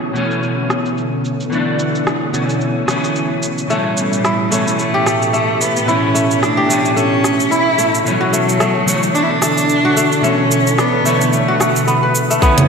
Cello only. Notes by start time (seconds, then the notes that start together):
3.69 G3
4.78 A3
5.33 A3
5.60 B3
5.88 C#4
6.42 D4
6.96 C#4
7.50 E4
8.05 F#3
9.14 D4
9.23 E4
9.30 D4
10.23 C#4
10.78 B3
11.32 A3